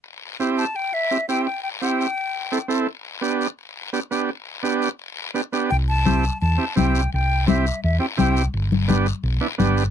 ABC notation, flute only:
X:1
M:4/4
L:1/16
Q:1/4=170
K:C
V:1 name="Flute"
z6 a2 g2 e4 g2 | g2 g2 g8- g2 z2 | z16 | z16 |
g2 a6 a4 g4 | g4 e4 e2 g2 g3 z | z16 |]